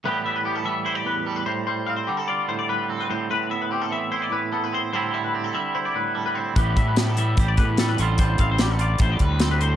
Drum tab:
HH |--------|--------|--------|--------|
SD |--------|--------|--------|--------|
BD |--------|--------|--------|--------|

HH |xxxxxxxx|xxxxxxxx|
SD |--o---o-|--o---o-|
BD |oo--oo--|oo--oo--|